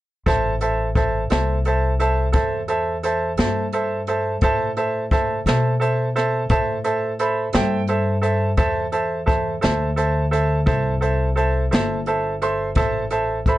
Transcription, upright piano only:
0.26 0.52 A4 medium
0.26 0.53 C5 medium
0.26 0.53 E5 medium
0.26 0.53 A5 medium
0.61 0.87 A4 medium
0.61 0.87 C5 soft
0.61 0.88 E5 soft
0.61 0.88 A5 medium
0.95 1.22 A4 soft
0.95 1.22 C5 soft
0.95 1.22 E5 soft
0.95 1.22 A5 medium
1.30 1.56 A4 medium
1.30 1.57 C5 medium
1.30 1.57 E5 medium
1.30 1.57 A5 medium
1.66 1.91 A4 medium
1.66 1.92 C5 medium
1.66 1.92 E5 medium
1.66 1.92 A5 medium
2.00 2.26 A4 medium
2.00 2.26 C5 medium
2.00 2.26 E5 medium
2.00 2.27 A5 medium
2.33 2.59 A4 medium
2.33 2.60 C5 medium
2.33 2.60 E5 medium
2.33 2.60 A5 medium
2.68 2.95 A4 medium
2.68 2.95 C5 soft
2.68 2.95 E5 medium
2.68 2.95 A5 medium
3.03 3.30 A4 medium
3.03 3.30 C5 soft
3.03 3.30 E5 soft
3.03 3.31 A5 medium
3.38 3.64 A4 medium
3.38 3.65 C5 soft
3.38 3.65 E5 soft
3.38 3.65 A5 medium
3.73 3.99 A4 medium
3.73 3.99 C5 soft
3.73 3.99 E5 medium
3.73 4.00 A5 medium
4.08 4.34 A4 medium
4.08 4.34 C5 soft
4.08 4.34 E5 soft
4.08 4.34 A5 medium
4.42 4.68 A4 medium
4.42 4.69 C5 medium
4.42 4.69 E5 medium
4.42 4.69 A5 medium
4.77 5.03 A4 soft
4.77 5.03 C5 soft
4.77 5.03 E5 soft
4.77 5.03 A5 medium
5.11 5.38 A4 soft
5.11 5.38 C5 soft
5.11 5.38 E5 soft
5.11 5.38 A5 medium
5.47 5.73 A4 medium
5.47 5.73 C5 medium
5.47 5.73 E5 soft
5.47 5.73 A5 medium
5.80 6.06 A4 medium
5.80 6.07 C5 medium
5.80 6.07 E5 medium
5.80 6.07 A5 medium
6.16 6.42 A4 medium
6.16 6.42 C5 medium
6.16 6.42 E5 medium
6.16 6.42 A5 medium
6.50 6.76 A4 medium
6.50 6.77 C5 medium
6.50 6.77 E5 medium
6.50 6.77 A5 medium
6.84 7.11 A4 medium
6.84 7.11 C5 soft
6.84 7.11 E5 medium
6.84 7.12 A5 medium
7.20 7.46 A4 medium
7.20 7.46 C5 medium
7.20 7.46 E5 medium
7.20 7.47 B5 medium
7.54 7.80 A4 medium
7.54 7.80 C5 medium
7.54 7.81 E5 medium
7.54 7.81 G5 medium
7.89 8.15 A4 medium
7.89 8.15 C5 soft
7.89 8.16 E5 soft
7.89 8.16 A5 medium
8.22 8.49 A4 medium
8.22 8.49 C5 soft
8.22 8.49 E5 medium
8.22 8.50 A5 medium
8.57 8.84 A4 medium
8.57 8.84 C5 medium
8.57 8.84 E5 medium
8.57 8.85 A5 medium
8.92 9.19 A4 soft
8.92 9.19 C5 soft
8.92 9.20 E5 soft
8.92 9.19 A5 medium
9.26 9.53 A4 soft
9.26 9.54 C5 soft
9.26 9.54 E5 soft
9.26 9.54 A5 medium
9.61 9.88 A4 medium
9.61 9.89 C5 medium
9.61 9.89 E5 medium
9.61 9.89 A5 medium
9.96 10.23 A4 medium
9.96 10.24 C5 medium
9.96 10.24 E5 medium
9.96 10.24 A5 medium
10.31 10.58 A4 medium
10.31 10.58 C5 medium
10.31 10.59 E5 medium
10.31 10.59 A5 medium
10.66 10.93 A4 medium
10.66 10.93 C5 medium
10.66 10.93 E5 medium
10.66 10.93 A5 medium
11.01 11.28 A4 medium
11.01 11.28 C5 medium
11.01 11.28 E5 medium
11.01 11.28 A5 medium
11.36 11.62 A4 medium
11.36 11.63 C5 medium
11.36 11.63 E5 medium
11.36 11.63 A5 medium
11.71 11.98 A4 medium
11.71 11.98 C5 soft
11.71 11.98 E5 medium
11.71 11.99 A5 medium
12.07 12.33 A4 medium
12.07 12.33 C5 soft
12.07 12.33 E5 soft
12.07 12.33 A5 medium
12.42 12.68 A4 medium
12.42 12.68 C5 medium
12.42 12.68 E5 medium
12.42 12.68 C6 medium
12.76 13.02 A4 medium
12.76 13.03 C5 medium
12.76 13.03 E5 medium
12.76 13.03 A5 medium
13.11 13.37 A4 medium
13.11 13.37 C5 soft
13.11 13.38 E5 medium
13.11 13.38 A5 medium
13.47 13.58 A4 medium
13.47 13.58 C5 soft
13.47 13.58 E5 soft
13.47 13.58 B5 medium

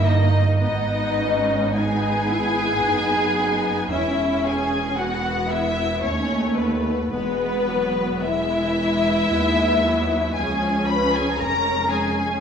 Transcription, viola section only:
0.00 0.62 A#3 medium
0.00 0.57 D#4 medium
0.61 1.73 B3 medium
1.18 1.74 C#4 medium
1.75 3.88 B3 medium
1.75 2.30 D#4 medium
2.31 2.85 E4 medium
2.85 3.37 D#4 medium
3.38 3.90 D#4 medium
3.92 4.98 C#4 medium
4.98 6.04 B3 medium
6.04 7.10 A3 medium
7.11 7.66 G#3 loud
7.11 8.22 B3 medium
7.67 8.24 F#3 medium
8.24 9.32 E3 medium
8.24 8.78 G#3 medium
8.80 9.31 G#3 medium
9.33 9.85 G#3 medium
9.33 10.35 B3 medium
9.86 10.37 F#3 medium
10.39 11.38 F3 medium
10.39 11.39 C#4 medium
11.40 12.40 G#3 medium
11.40 12.40 C#4 medium

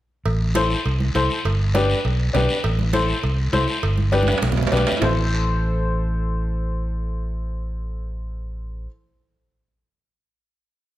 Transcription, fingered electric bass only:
0.25 0.73 A1 medium
0.86 1.09 C2 medium
1.15 1.27 C2 medium
1.45 1.93 G1 loud
2.05 2.28 B1 medium
2.34 2.46 B1 loud
2.64 3.12 A1 loud
3.24 3.47 C2 medium
3.53 3.65 C2 loud
3.83 4.30 G1 medium
4.42 4.66 B1 medium
4.72 4.84 B1 loud
5.02 8.86 A1 loud

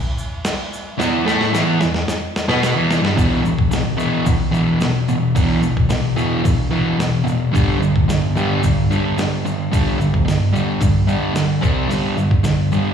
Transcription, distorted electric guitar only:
0.98 1.25 E2 medium
0.98 1.26 E3 loud
1.25 1.52 A2 medium
1.25 1.53 A3 medium
1.52 1.79 E2 medium
1.52 1.80 E3 loud
1.80 2.03 E2 medium
2.48 2.75 B2 medium
2.48 2.76 B3 loud
2.74 3.02 E2 medium
2.74 3.03 E3 loud
3.02 3.16 G2 medium
3.02 3.17 G3 loud
3.17 3.42 E2 medium
3.17 3.41 B2 medium
3.17 3.43 E3 loud
3.42 3.69 E2 medium
3.42 3.68 B2 medium
3.71 3.96 E2 medium
3.71 3.97 B2 medium
3.97 4.24 E2 medium
3.97 4.25 B2 medium
3.97 4.25 E3 loud
4.26 4.50 E2 medium
4.26 4.51 B2 medium
4.51 4.79 E2 medium
4.51 4.79 B2 medium
4.51 4.79 E3 medium
4.81 5.06 E2 medium
4.81 5.06 B2 medium
5.08 5.33 E2 medium
5.08 5.34 B2 medium
5.35 5.60 E2 medium
5.35 5.61 B2 loud
5.35 5.62 E3 medium
5.61 5.87 E2 medium
5.61 5.88 B2 medium
5.89 6.15 E2 medium
5.89 6.15 B2 medium
6.16 6.42 E2 medium
6.16 6.43 B2 medium
6.16 6.43 E3 loud
6.44 6.69 E2 medium
6.44 6.69 B2 medium
6.71 6.97 E2 medium
6.71 6.97 B2 medium
6.71 6.98 E3 loud
6.98 7.23 E2 medium
6.98 7.23 B2 medium
7.24 7.50 E2 medium
7.24 7.50 B2 medium
7.52 7.78 G2 medium
7.52 7.79 D3 medium
7.52 7.80 G3 loud
7.79 8.06 G2 medium
7.79 8.06 D3 medium
8.08 8.34 G2 medium
8.08 8.34 D3 medium
8.35 8.62 G2 medium
8.35 8.62 D3 loud
8.35 8.62 G3 loud
8.63 8.88 G2 medium
8.63 8.88 D3 medium
8.91 9.17 G2 medium
8.91 9.17 D3 medium
8.91 9.17 G3 loud
9.18 9.43 G2 medium
9.18 9.43 D3 medium
9.45 9.70 G2 medium
9.45 9.70 D3 medium
9.72 9.97 G2 medium
9.72 9.98 D3 medium
9.72 9.99 G3 loud
9.98 10.24 G2 medium
9.98 10.24 D3 medium
10.26 10.51 G2 medium
10.26 10.51 D3 medium
10.53 10.80 G2 medium
10.53 10.80 D3 medium
10.53 10.80 G3 loud
10.81 11.06 G2 medium
10.81 11.06 D3 medium
11.07 11.32 G2 medium
11.07 11.33 D3 loud
11.07 11.34 G3 medium
11.33 11.59 G2 medium
11.33 11.60 D3 medium
11.61 11.88 C3 medium
11.61 11.88 G3 loud
11.61 11.89 C4 loud
11.88 12.15 G2 medium
11.88 12.15 D3 loud
11.88 12.15 G3 loud
12.16 12.42 G2 medium
12.16 12.42 D3 medium
12.43 12.69 G2 medium
12.43 12.69 D3 medium
12.72 12.94 G2 medium
12.72 12.94 D3 medium
12.72 12.94 G3 medium

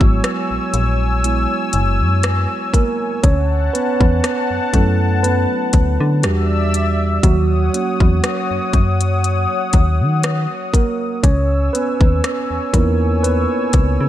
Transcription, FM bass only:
0.01 0.21 G#1 medium
0.51 0.60 A#1 soft
0.74 1.47 A#1 medium
1.74 2.02 F#1 medium
2.01 2.47 F#2 loud
3.24 3.70 D2 medium
4.01 4.21 E2 medium
4.51 4.60 F#2 soft
4.74 5.47 F#2 medium
5.74 5.98 D2 medium
6.00 6.25 D3 loud
6.23 7.19 E2 medium
7.24 7.70 D#2 loud
8.00 8.21 E2 medium
8.51 8.60 F#2 soft
8.74 9.47 F#2 medium
9.74 10.02 D#2 medium
10.01 10.47 D#3 medium
11.24 11.70 C#2 loud
12.01 12.21 D#2 medium
12.51 12.60 E2 soft
12.74 13.47 E2 medium
13.74 13.98 C#2 medium
14.01 14.09 C#3 medium

